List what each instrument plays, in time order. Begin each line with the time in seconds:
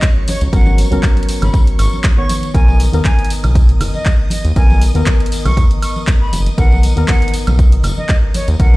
Already playing: synth stab F#3 B3 C#4 A#4, string machine C#5 C#6
0.02 kick, clap, closed hi-hat, tambourine
0.28 flute C#5, open hi-hat, tambourine, high conga
0.41 analog synth bass C#2, closed hi-hat, tambourine
0.53 analog synth bass G#1, synth stab F#3 B3 C#4 A#4, flute F#5, kick, closed hi-hat, tambourine
0.66 tambourine, high conga
0.78 open hi-hat, tambourine
0.91 analog synth bass C#2, synth stab F#3 B3 C#4 A#4, closed hi-hat, tambourine
1.03 kick, clap, closed hi-hat, tambourine, high conga
1.17 closed hi-hat
1.23 closed hi-hat
1.29 open hi-hat, tambourine
1.42 analog synth bass G#1, flute B5, closed hi-hat, tambourine, high conga, low conga, high woodblock
1.54 kick, closed hi-hat, tambourine
1.67 closed hi-hat
1.79 analog synth bass G#1, flute C#6, open hi-hat, tambourine, high woodblock
1.93 tambourine, high conga
2.04 kick, clap, closed hi-hat, tambourine
2.17 synth stab D#3 B3 C#5, flute C#6
2.29 open hi-hat, tambourine, high conga
2.43 closed hi-hat, tambourine
2.54 analog synth bass B1, synth stab D#3 B3 A#4, string machine D#5 D#6, flute G#5, kick, closed hi-hat, tambourine
2.68 tambourine, high conga
2.80 open hi-hat, tambourine
2.92 analog synth bass D#2, synth stab D#3 B3 A#4, closed hi-hat, tambourine
3.04 flute G#5, kick, clap, closed hi-hat, tambourine, high conga
3.19 closed hi-hat
3.25 closed hi-hat
3.30 open hi-hat, tambourine
3.44 analog synth bass B1, closed hi-hat, tambourine, high conga, low conga, high woodblock
3.55 kick, closed hi-hat, tambourine
3.69 closed hi-hat
3.80 analog synth bass F#1, open hi-hat, tambourine, low conga, high woodblock
3.94 flute D#5, tambourine, high conga
4.05 kick, clap, closed hi-hat, tambourine
4.30 flute D#5, open hi-hat, tambourine, high conga
4.45 analog synth bass D#2, closed hi-hat, tambourine
4.56 analog synth bass B1, synth stab D#3 B3 A#4, flute G#5, kick, closed hi-hat, tambourine
4.70 tambourine, high conga
4.82 open hi-hat, tambourine
4.94 analog synth bass D#2, synth stab D#3 B3 A#4, closed hi-hat, tambourine
5.06 kick, clap, closed hi-hat, tambourine, high conga
5.20 closed hi-hat
5.26 closed hi-hat
5.32 open hi-hat, tambourine
5.45 analog synth bass B1, flute C#6, closed hi-hat, tambourine, high conga, low conga, high woodblock
5.57 analog synth bass D#2, kick, closed hi-hat, tambourine
5.71 closed hi-hat
5.82 flute C#6, open hi-hat, tambourine, high woodblock
5.96 tambourine, high conga
6.07 kick, clap, closed hi-hat, tambourine
6.21 flute B5
6.33 analog synth bass F#1, open hi-hat, tambourine, high conga
6.46 closed hi-hat, tambourine
6.58 analog synth bass B1, synth stab D#3 B3 A#4, flute F#5, kick, closed hi-hat, tambourine
6.71 tambourine, high conga
6.83 open hi-hat, tambourine
6.96 analog synth bass D#2, synth stab D#3 B3 A#4, closed hi-hat, tambourine
7.08 flute F#5, kick, clap, closed hi-hat, tambourine, high conga
7.22 closed hi-hat
7.28 closed hi-hat
7.33 open hi-hat, tambourine
7.47 analog synth bass B1, closed hi-hat, tambourine, high conga, low conga, high woodblock
7.59 kick, closed hi-hat, tambourine
7.72 closed hi-hat
7.83 analog synth bass F#1, open hi-hat, tambourine, low conga, high woodblock
7.97 flute D#5, tambourine, high conga
8.09 kick, clap, closed hi-hat, tambourine
8.34 flute C#5, open hi-hat, tambourine, high conga
8.48 analog synth bass D#2, closed hi-hat, tambourine
8.59 analog synth bass B1, synth stab D#3 B3 A#4, flute F#5, kick, closed hi-hat, tambourine
8.74 high conga